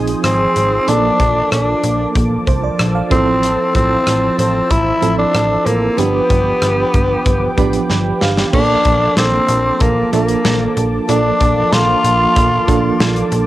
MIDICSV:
0, 0, Header, 1, 6, 480
1, 0, Start_track
1, 0, Tempo, 638298
1, 660, Time_signature, 4, 2, 24, 8
1, 10127, End_track
2, 0, Start_track
2, 0, Title_t, "Analog synth pad"
2, 0, Program_c, 0, 89
2, 0, Note_on_c, 0, 53, 74
2, 0, Note_on_c, 0, 72, 65
2, 0, Note_on_c, 0, 80, 66
2, 0, Note_on_c, 0, 87, 77
2, 629, Note_off_c, 0, 72, 0
2, 641, Note_off_c, 0, 87, 0
2, 642, Note_off_c, 0, 80, 0
2, 656, Note_on_c, 0, 86, 82
2, 659, Note_on_c, 0, 58, 66
2, 659, Note_on_c, 0, 81, 67
2, 2321, Note_off_c, 0, 86, 0
2, 2322, Note_off_c, 0, 58, 0
2, 2341, Note_on_c, 0, 72, 64
2, 2342, Note_on_c, 0, 88, 82
2, 4469, Note_off_c, 0, 81, 0
2, 4479, Note_off_c, 0, 72, 0
2, 4479, Note_off_c, 0, 88, 0
2, 4493, Note_on_c, 0, 79, 62
2, 4493, Note_on_c, 0, 86, 75
2, 4494, Note_on_c, 0, 71, 64
2, 6390, Note_off_c, 0, 53, 0
2, 6397, Note_off_c, 0, 79, 0
2, 6397, Note_off_c, 0, 86, 0
2, 6398, Note_off_c, 0, 71, 0
2, 6415, Note_on_c, 0, 86, 78
2, 6416, Note_on_c, 0, 53, 72
2, 6417, Note_on_c, 0, 58, 64
2, 6419, Note_on_c, 0, 81, 67
2, 10127, Note_off_c, 0, 53, 0
2, 10127, Note_off_c, 0, 58, 0
2, 10127, Note_off_c, 0, 81, 0
2, 10127, Note_off_c, 0, 86, 0
2, 10127, End_track
3, 0, Start_track
3, 0, Title_t, "FM electric piano"
3, 0, Program_c, 1, 5
3, 0, Control_c, 1, 64, 127
3, 0, Note_on_c, 1, 53, 69
3, 0, Note_on_c, 1, 60, 64
3, 0, Note_on_c, 1, 63, 65
3, 0, Note_on_c, 1, 68, 77
3, 612, Note_off_c, 1, 53, 0
3, 613, Note_off_c, 1, 60, 0
3, 615, Note_off_c, 1, 63, 0
3, 616, Note_off_c, 1, 68, 0
3, 660, Note_on_c, 1, 53, 65
3, 665, Note_on_c, 1, 58, 61
3, 668, Note_on_c, 1, 62, 62
3, 670, Control_c, 1, 64, 0
3, 671, Note_on_c, 1, 69, 73
3, 790, Control_c, 1, 64, 127
3, 1557, Note_off_c, 1, 53, 0
3, 1559, Note_off_c, 1, 58, 0
3, 1561, Note_off_c, 1, 62, 0
3, 1562, Note_off_c, 1, 69, 0
3, 1861, Note_on_c, 1, 72, 64
3, 1974, Note_off_c, 1, 72, 0
3, 1982, Note_on_c, 1, 74, 65
3, 2209, Note_off_c, 1, 74, 0
3, 2219, Note_on_c, 1, 77, 61
3, 2332, Note_on_c, 1, 53, 72
3, 2335, Note_on_c, 1, 60, 65
3, 2338, Note_on_c, 1, 64, 67
3, 2343, Note_on_c, 1, 69, 77
3, 2349, Control_c, 1, 64, 0
3, 2447, Note_off_c, 1, 77, 0
3, 2476, Control_c, 1, 64, 127
3, 3233, Note_off_c, 1, 53, 0
3, 3234, Note_off_c, 1, 60, 0
3, 3236, Note_off_c, 1, 64, 0
3, 3238, Note_off_c, 1, 69, 0
3, 3772, Note_on_c, 1, 53, 69
3, 3775, Note_on_c, 1, 60, 65
3, 3778, Note_on_c, 1, 64, 65
3, 3781, Note_on_c, 1, 69, 77
3, 4449, Note_off_c, 1, 53, 0
3, 4450, Note_off_c, 1, 60, 0
3, 4451, Note_off_c, 1, 64, 0
3, 4453, Note_off_c, 1, 69, 0
3, 4491, Note_on_c, 1, 53, 66
3, 4495, Note_on_c, 1, 59, 64
3, 4498, Note_on_c, 1, 62, 61
3, 4502, Note_on_c, 1, 67, 73
3, 4509, Control_c, 1, 64, 0
3, 4623, Control_c, 1, 64, 127
3, 5392, Note_off_c, 1, 53, 0
3, 5394, Note_off_c, 1, 59, 0
3, 5396, Note_off_c, 1, 62, 0
3, 5398, Note_off_c, 1, 67, 0
3, 5695, Note_on_c, 1, 53, 81
3, 5699, Note_on_c, 1, 83, 65
3, 5700, Note_on_c, 1, 59, 73
3, 5700, Note_on_c, 1, 62, 74
3, 5704, Note_on_c, 1, 67, 90
3, 5922, Note_off_c, 1, 83, 0
3, 5939, Note_on_c, 1, 79, 61
3, 6162, Note_off_c, 1, 79, 0
3, 6180, Note_on_c, 1, 77, 65
3, 6370, Note_off_c, 1, 53, 0
3, 6372, Note_off_c, 1, 59, 0
3, 6373, Note_off_c, 1, 62, 0
3, 6375, Note_off_c, 1, 67, 0
3, 6403, Note_off_c, 1, 77, 0
3, 6414, Note_on_c, 1, 53, 66
3, 6417, Note_on_c, 1, 58, 60
3, 6420, Note_on_c, 1, 62, 61
3, 6423, Note_on_c, 1, 69, 76
3, 6429, Control_c, 1, 64, 0
3, 6581, Control_c, 1, 64, 127
3, 7314, Note_off_c, 1, 53, 0
3, 7316, Note_off_c, 1, 58, 0
3, 7317, Note_off_c, 1, 62, 0
3, 7318, Note_off_c, 1, 69, 0
3, 7613, Note_on_c, 1, 53, 74
3, 7616, Note_on_c, 1, 58, 66
3, 7619, Note_on_c, 1, 62, 64
3, 7622, Note_on_c, 1, 69, 79
3, 8289, Note_off_c, 1, 53, 0
3, 8291, Note_off_c, 1, 58, 0
3, 8292, Note_off_c, 1, 62, 0
3, 8294, Note_off_c, 1, 69, 0
3, 8336, Note_on_c, 1, 53, 67
3, 8341, Note_on_c, 1, 58, 61
3, 8344, Note_on_c, 1, 62, 61
3, 8346, Note_on_c, 1, 69, 78
3, 9235, Note_off_c, 1, 53, 0
3, 9237, Note_off_c, 1, 58, 0
3, 9239, Note_off_c, 1, 62, 0
3, 9240, Note_off_c, 1, 69, 0
3, 9532, Note_on_c, 1, 53, 86
3, 9534, Note_on_c, 1, 58, 80
3, 9539, Note_on_c, 1, 62, 83
3, 9542, Note_on_c, 1, 69, 94
3, 10127, Note_off_c, 1, 53, 0
3, 10127, Note_off_c, 1, 58, 0
3, 10127, Note_off_c, 1, 62, 0
3, 10127, Note_off_c, 1, 69, 0
3, 10127, End_track
4, 0, Start_track
4, 0, Title_t, "Tenor saxophone"
4, 0, Program_c, 2, 66
4, 185, Note_on_c, 2, 60, 91
4, 662, Note_on_c, 2, 62, 99
4, 673, Note_off_c, 2, 60, 0
4, 1141, Note_off_c, 2, 62, 0
4, 1149, Note_on_c, 2, 62, 80
4, 1594, Note_off_c, 2, 62, 0
4, 2344, Note_on_c, 2, 60, 95
4, 2791, Note_off_c, 2, 60, 0
4, 2826, Note_on_c, 2, 60, 97
4, 3272, Note_off_c, 2, 60, 0
4, 3305, Note_on_c, 2, 60, 90
4, 3541, Note_on_c, 2, 64, 105
4, 3553, Note_off_c, 2, 60, 0
4, 3896, Note_off_c, 2, 64, 0
4, 3900, Note_on_c, 2, 62, 97
4, 4259, Note_on_c, 2, 58, 85
4, 4270, Note_off_c, 2, 62, 0
4, 4498, Note_on_c, 2, 59, 86
4, 4509, Note_off_c, 2, 58, 0
4, 5939, Note_off_c, 2, 59, 0
4, 6418, Note_on_c, 2, 62, 105
4, 6869, Note_off_c, 2, 62, 0
4, 6900, Note_on_c, 2, 60, 90
4, 7383, Note_on_c, 2, 58, 83
4, 7394, Note_off_c, 2, 60, 0
4, 7613, Note_off_c, 2, 58, 0
4, 7618, Note_on_c, 2, 58, 73
4, 8069, Note_off_c, 2, 58, 0
4, 8340, Note_on_c, 2, 62, 90
4, 8821, Note_on_c, 2, 65, 106
4, 8832, Note_off_c, 2, 62, 0
4, 10020, Note_off_c, 2, 65, 0
4, 10127, End_track
5, 0, Start_track
5, 0, Title_t, "FM bass"
5, 0, Program_c, 3, 39
5, 0, Note_on_c, 3, 34, 87
5, 114, Note_off_c, 3, 34, 0
5, 180, Note_on_c, 3, 32, 100
5, 352, Note_off_c, 3, 32, 0
5, 423, Note_on_c, 3, 32, 90
5, 594, Note_off_c, 3, 32, 0
5, 663, Note_on_c, 3, 34, 101
5, 834, Note_off_c, 3, 34, 0
5, 899, Note_on_c, 3, 34, 91
5, 1072, Note_off_c, 3, 34, 0
5, 1143, Note_on_c, 3, 34, 99
5, 1314, Note_off_c, 3, 34, 0
5, 1380, Note_on_c, 3, 34, 91
5, 1553, Note_off_c, 3, 34, 0
5, 1620, Note_on_c, 3, 34, 100
5, 1793, Note_off_c, 3, 34, 0
5, 1859, Note_on_c, 3, 36, 89
5, 2032, Note_off_c, 3, 36, 0
5, 2102, Note_on_c, 3, 34, 101
5, 2274, Note_off_c, 3, 34, 0
5, 2339, Note_on_c, 3, 33, 97
5, 2685, Note_off_c, 3, 33, 0
5, 2819, Note_on_c, 3, 33, 94
5, 2992, Note_off_c, 3, 33, 0
5, 3061, Note_on_c, 3, 33, 97
5, 3233, Note_off_c, 3, 33, 0
5, 3298, Note_on_c, 3, 33, 97
5, 3471, Note_off_c, 3, 33, 0
5, 3537, Note_on_c, 3, 33, 92
5, 3711, Note_off_c, 3, 33, 0
5, 3779, Note_on_c, 3, 33, 88
5, 3952, Note_off_c, 3, 33, 0
5, 4019, Note_on_c, 3, 33, 101
5, 4192, Note_off_c, 3, 33, 0
5, 4257, Note_on_c, 3, 33, 101
5, 4430, Note_off_c, 3, 33, 0
5, 4499, Note_on_c, 3, 31, 99
5, 4672, Note_off_c, 3, 31, 0
5, 4739, Note_on_c, 3, 31, 104
5, 4912, Note_off_c, 3, 31, 0
5, 4977, Note_on_c, 3, 31, 98
5, 5151, Note_off_c, 3, 31, 0
5, 5221, Note_on_c, 3, 31, 95
5, 5393, Note_off_c, 3, 31, 0
5, 5458, Note_on_c, 3, 31, 94
5, 5632, Note_off_c, 3, 31, 0
5, 5697, Note_on_c, 3, 33, 82
5, 5870, Note_off_c, 3, 33, 0
5, 5940, Note_on_c, 3, 31, 101
5, 6113, Note_off_c, 3, 31, 0
5, 6180, Note_on_c, 3, 31, 94
5, 6352, Note_off_c, 3, 31, 0
5, 6418, Note_on_c, 3, 34, 105
5, 6591, Note_off_c, 3, 34, 0
5, 6657, Note_on_c, 3, 34, 98
5, 6831, Note_off_c, 3, 34, 0
5, 6896, Note_on_c, 3, 34, 97
5, 7070, Note_off_c, 3, 34, 0
5, 7133, Note_on_c, 3, 34, 91
5, 7308, Note_off_c, 3, 34, 0
5, 7377, Note_on_c, 3, 34, 94
5, 7550, Note_off_c, 3, 34, 0
5, 7618, Note_on_c, 3, 34, 97
5, 7791, Note_off_c, 3, 34, 0
5, 7858, Note_on_c, 3, 34, 104
5, 8031, Note_off_c, 3, 34, 0
5, 8097, Note_on_c, 3, 34, 91
5, 8271, Note_off_c, 3, 34, 0
5, 8338, Note_on_c, 3, 34, 107
5, 8511, Note_off_c, 3, 34, 0
5, 8578, Note_on_c, 3, 34, 98
5, 8751, Note_off_c, 3, 34, 0
5, 8815, Note_on_c, 3, 34, 101
5, 8990, Note_off_c, 3, 34, 0
5, 9055, Note_on_c, 3, 34, 93
5, 9229, Note_off_c, 3, 34, 0
5, 9297, Note_on_c, 3, 34, 103
5, 9471, Note_off_c, 3, 34, 0
5, 9538, Note_on_c, 3, 34, 105
5, 9711, Note_off_c, 3, 34, 0
5, 9777, Note_on_c, 3, 34, 106
5, 9950, Note_off_c, 3, 34, 0
5, 10017, Note_on_c, 3, 34, 89
5, 10127, Note_off_c, 3, 34, 0
5, 10127, End_track
6, 0, Start_track
6, 0, Title_t, "Drums"
6, 57, Note_on_c, 9, 42, 50
6, 132, Note_off_c, 9, 42, 0
6, 180, Note_on_c, 9, 42, 71
6, 181, Note_on_c, 9, 37, 105
6, 255, Note_off_c, 9, 42, 0
6, 256, Note_off_c, 9, 37, 0
6, 421, Note_on_c, 9, 42, 58
6, 496, Note_off_c, 9, 42, 0
6, 661, Note_on_c, 9, 42, 74
6, 736, Note_off_c, 9, 42, 0
6, 900, Note_on_c, 9, 42, 78
6, 901, Note_on_c, 9, 36, 74
6, 976, Note_off_c, 9, 36, 0
6, 976, Note_off_c, 9, 42, 0
6, 1143, Note_on_c, 9, 37, 100
6, 1143, Note_on_c, 9, 42, 78
6, 1218, Note_off_c, 9, 37, 0
6, 1218, Note_off_c, 9, 42, 0
6, 1379, Note_on_c, 9, 42, 65
6, 1455, Note_off_c, 9, 42, 0
6, 1620, Note_on_c, 9, 36, 81
6, 1620, Note_on_c, 9, 42, 79
6, 1695, Note_off_c, 9, 36, 0
6, 1695, Note_off_c, 9, 42, 0
6, 1860, Note_on_c, 9, 36, 83
6, 1860, Note_on_c, 9, 42, 58
6, 1935, Note_off_c, 9, 36, 0
6, 1935, Note_off_c, 9, 42, 0
6, 2100, Note_on_c, 9, 42, 73
6, 2101, Note_on_c, 9, 37, 101
6, 2175, Note_off_c, 9, 42, 0
6, 2176, Note_off_c, 9, 37, 0
6, 2340, Note_on_c, 9, 36, 98
6, 2340, Note_on_c, 9, 42, 57
6, 2415, Note_off_c, 9, 36, 0
6, 2415, Note_off_c, 9, 42, 0
6, 2581, Note_on_c, 9, 42, 70
6, 2656, Note_off_c, 9, 42, 0
6, 2819, Note_on_c, 9, 42, 76
6, 2820, Note_on_c, 9, 36, 75
6, 2894, Note_off_c, 9, 42, 0
6, 2895, Note_off_c, 9, 36, 0
6, 3060, Note_on_c, 9, 37, 90
6, 3060, Note_on_c, 9, 42, 78
6, 3135, Note_off_c, 9, 37, 0
6, 3135, Note_off_c, 9, 42, 0
6, 3301, Note_on_c, 9, 42, 69
6, 3376, Note_off_c, 9, 42, 0
6, 3538, Note_on_c, 9, 42, 77
6, 3539, Note_on_c, 9, 36, 88
6, 3614, Note_off_c, 9, 36, 0
6, 3614, Note_off_c, 9, 42, 0
6, 3778, Note_on_c, 9, 42, 60
6, 3853, Note_off_c, 9, 42, 0
6, 4019, Note_on_c, 9, 42, 69
6, 4020, Note_on_c, 9, 37, 105
6, 4094, Note_off_c, 9, 42, 0
6, 4095, Note_off_c, 9, 37, 0
6, 4260, Note_on_c, 9, 42, 60
6, 4335, Note_off_c, 9, 42, 0
6, 4498, Note_on_c, 9, 42, 75
6, 4573, Note_off_c, 9, 42, 0
6, 4739, Note_on_c, 9, 36, 76
6, 4739, Note_on_c, 9, 42, 73
6, 4814, Note_off_c, 9, 36, 0
6, 4814, Note_off_c, 9, 42, 0
6, 4978, Note_on_c, 9, 37, 89
6, 4978, Note_on_c, 9, 42, 80
6, 5053, Note_off_c, 9, 42, 0
6, 5054, Note_off_c, 9, 37, 0
6, 5219, Note_on_c, 9, 42, 66
6, 5220, Note_on_c, 9, 36, 77
6, 5294, Note_off_c, 9, 42, 0
6, 5296, Note_off_c, 9, 36, 0
6, 5458, Note_on_c, 9, 42, 85
6, 5459, Note_on_c, 9, 36, 87
6, 5533, Note_off_c, 9, 42, 0
6, 5534, Note_off_c, 9, 36, 0
6, 5698, Note_on_c, 9, 36, 81
6, 5698, Note_on_c, 9, 42, 58
6, 5773, Note_off_c, 9, 36, 0
6, 5773, Note_off_c, 9, 42, 0
6, 5814, Note_on_c, 9, 42, 48
6, 5889, Note_off_c, 9, 42, 0
6, 5938, Note_on_c, 9, 38, 49
6, 6013, Note_off_c, 9, 38, 0
6, 6176, Note_on_c, 9, 38, 78
6, 6251, Note_off_c, 9, 38, 0
6, 6297, Note_on_c, 9, 38, 74
6, 6372, Note_off_c, 9, 38, 0
6, 6417, Note_on_c, 9, 36, 107
6, 6417, Note_on_c, 9, 49, 82
6, 6492, Note_off_c, 9, 36, 0
6, 6492, Note_off_c, 9, 49, 0
6, 6654, Note_on_c, 9, 42, 74
6, 6657, Note_on_c, 9, 36, 81
6, 6729, Note_off_c, 9, 42, 0
6, 6733, Note_off_c, 9, 36, 0
6, 6895, Note_on_c, 9, 38, 94
6, 6895, Note_on_c, 9, 42, 79
6, 6970, Note_off_c, 9, 38, 0
6, 6970, Note_off_c, 9, 42, 0
6, 7133, Note_on_c, 9, 42, 70
6, 7208, Note_off_c, 9, 42, 0
6, 7373, Note_on_c, 9, 42, 78
6, 7376, Note_on_c, 9, 36, 93
6, 7448, Note_off_c, 9, 42, 0
6, 7452, Note_off_c, 9, 36, 0
6, 7617, Note_on_c, 9, 42, 60
6, 7693, Note_off_c, 9, 42, 0
6, 7734, Note_on_c, 9, 42, 55
6, 7809, Note_off_c, 9, 42, 0
6, 7857, Note_on_c, 9, 42, 73
6, 7858, Note_on_c, 9, 38, 102
6, 7932, Note_off_c, 9, 42, 0
6, 7933, Note_off_c, 9, 38, 0
6, 8099, Note_on_c, 9, 42, 62
6, 8174, Note_off_c, 9, 42, 0
6, 8339, Note_on_c, 9, 42, 77
6, 8414, Note_off_c, 9, 42, 0
6, 8577, Note_on_c, 9, 42, 78
6, 8579, Note_on_c, 9, 36, 77
6, 8652, Note_off_c, 9, 42, 0
6, 8654, Note_off_c, 9, 36, 0
6, 8818, Note_on_c, 9, 38, 95
6, 8818, Note_on_c, 9, 42, 78
6, 8893, Note_off_c, 9, 38, 0
6, 8893, Note_off_c, 9, 42, 0
6, 9058, Note_on_c, 9, 42, 67
6, 9133, Note_off_c, 9, 42, 0
6, 9297, Note_on_c, 9, 42, 84
6, 9298, Note_on_c, 9, 36, 95
6, 9372, Note_off_c, 9, 42, 0
6, 9373, Note_off_c, 9, 36, 0
6, 9537, Note_on_c, 9, 36, 83
6, 9538, Note_on_c, 9, 42, 64
6, 9612, Note_off_c, 9, 36, 0
6, 9613, Note_off_c, 9, 42, 0
6, 9779, Note_on_c, 9, 42, 72
6, 9780, Note_on_c, 9, 38, 110
6, 9854, Note_off_c, 9, 42, 0
6, 9855, Note_off_c, 9, 38, 0
6, 9898, Note_on_c, 9, 42, 47
6, 9973, Note_off_c, 9, 42, 0
6, 10016, Note_on_c, 9, 42, 60
6, 10091, Note_off_c, 9, 42, 0
6, 10127, End_track
0, 0, End_of_file